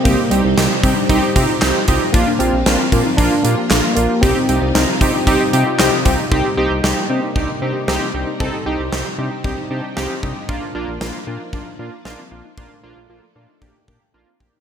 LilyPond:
<<
  \new Staff \with { instrumentName = "Synth keys" } { \time 4/4 \key c \dorian \tempo 4 = 115 << { r2 r8 bes''8 g''8 ees''8 | r1 | r2 r8 g''8 ees''4 | r1 |
r2 r8 a''16 g''16 f''8 ees''8 | r1 | r1 | } \\ { <c' ees' g'>8 <c' ees' g'>8 <c' ees' g'>8 <c' ees' g'>8 <c' ees' g'>8 <c' ees' g'>8 <c' ees' g'>8 <c' ees' g'>8 | <bes d' f'>8 <bes d' f'>8 <bes d' f'>8 <bes d' f'>8 <bes d' f'>8 <bes d' f'>8 <bes d' f'>8 <bes d' f'>8 | <c' ees' g'>8 <c' ees' g'>8 <c' ees' bes'>8 <c' ees' g'>8 <c' ees' g'>8 <c' ees' g'>8 <c' ees' g'>8 <c' ees' g'>8 | <c' ees' g'>8 <c' ees' g'>8 <c' ees' g'>8 <c' ees' g'>8 <c' ees' g'>8 <c' ees' g'>8 <c' ees' g'>8 <c' ees' g'>8 |
<c' ees' a'>8 <c' ees' g'>8 <c' ees' g'>8 <c' ees' g'>8 <c' ees' g'>8 <c' ees' g'>8 <c' ees' g'>8 <c' ees' g'>8 | <bes d' f'>8 <bes d' f'>8 <bes d' f'>8 <bes d' f'>8 <bes d' f'>8 <bes d' f'>8 <bes d' f'>8 <bes d' f'>8 | <bes d' f'>8 <bes d' f'>8 <bes d' f'>8 <bes d' f'>8 <bes d' g'>8 <bes d' g'>8 <bes d' f'>8 <bes d' g'>8 | } >> }
  \new Staff \with { instrumentName = "Synth pluck" } { \time 4/4 \key c \dorian c'16 c'16 g'8 ees'8 ees'16 d'16 ees'16 ees'16 f'16 f'16 g'16 f'16 f'16 g'16 | d'16 d'16 g'8 f'8 f'16 ees'16 f'16 f'16 g'16 g'16 a'16 f'16 f'16 g'16 | c'16 c'16 g'8 ees'8 ees'16 d'16 ees'16 ees'16 f'16 f'16 g'16 f'16 f'16 g'16 | ees'16 g'16 ees'8 g'16 g'16 d'16 ees'16 d'16 ees'16 d'8 ees'16 c'16 d'16 ees'16 |
ees'16 g'16 ees'8 g'16 g'16 d'16 ees'16 d'16 ees'16 d'8 ees'16 c'16 d'16 ees'16 | d'16 f'16 d'8 f'16 f'16 d'16 ees'16 d'16 ees'16 d'8 ees'16 c'16 d'16 ees'16 | d'16 f'16 d'8 f'16 f'16 d'16 ees'16 d'16 ees'16 d'8 ees'16 c'16 d'16 ees'16 | }
  \new Staff \with { instrumentName = "String machine" } { \time 4/4 \key c \dorian << { <c g ees'>1 | <f f'>1 | <c g ees'>1 | <c g ees'>1~ |
<c g ees'>1 | <f d'>1~ | <f d'>1 | } \\ { c'1 | bes1 | r1 | bes1 |
c'1 | bes1 | a1 | } >> }
  \new Staff \with { instrumentName = "Tine electric piano" } { \time 4/4 \key c \dorian bes8 g2 r4. | bes8 c'4. d'8 bes4 bes8 | c'2.~ c'8 r8 | r1 |
r1 | r1 | r1 | }
  \new Staff \with { instrumentName = "Analog synth bass" } { \clef bass \time 4/4 \key c \dorian c,16 r16 c,16 c,16 c,16 r16 c16 r16 c,16 r16 c16 r16 c,16 r16 c,16 r16 | bes,,16 r16 bes,,16 bes,,16 bes,,16 r16 bes,16 r16 bes,,16 r16 bes,16 r16 bes,,16 r16 bes,,16 r16 | c,16 r16 c,16 c,16 c,16 r16 c16 r16 c,16 r16 c16 r16 c,16 r16 c,16 r16 | c,16 r16 c,16 c,16 c,16 r16 c16 r16 c,16 r16 c16 r16 c,16 r16 c,16 r16 |
c,16 r16 c,16 c,16 c,16 r16 c16 r16 c,16 r16 c16 r16 c,16 r16 c,16 r16 | bes,,16 r16 bes,,16 bes,,16 bes,,16 r16 bes,16 r16 bes,,16 r16 bes,16 r16 bes,,16 r16 bes,,16 r16 | bes,,16 r16 bes,,16 bes,,16 bes,,16 r16 bes,16 r16 bes,,16 r16 bes,16 r16 bes,,16 r16 bes,,16 r16 | }
  \new DrumStaff \with { instrumentName = "Drums" } \drummode { \time 4/4 <hh bd>8 hh8 <hh sn>8 <hh bd>8 <hh bd>8 <hh bd>8 <hc hh sn>8 <hh bd>8 | <hh bd>8 hh8 <hh sn>8 <hh bd>8 <hh bd>8 hh8 <hc hh sn>8 hh8 | <hh bd>8 hh8 <hh sn>8 <hh bd>8 <hh bd>8 hh8 <hc hh sn>8 <hh bd>8 | bd4 sn4 bd4 sn4 |
bd4 sn4 bd4 sn8 bd8 | bd4 sn4 bd4 sn4 | bd4 r4 bd8 bd8 r8 bd8 | }
>>